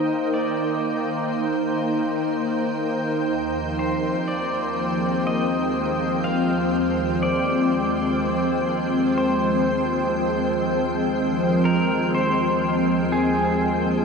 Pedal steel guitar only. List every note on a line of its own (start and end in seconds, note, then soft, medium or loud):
0.00 0.30 D#5 medium
0.34 2.75 D5 medium
3.79 4.29 C5 medium
4.28 5.26 D5 medium
5.27 6.24 D#5 medium
6.24 7.22 F5 medium
7.23 9.25 D5 medium
9.18 10.61 C5 medium
11.65 12.14 A#4 medium
12.15 13.15 C5 medium
13.12 14.05 G#4 medium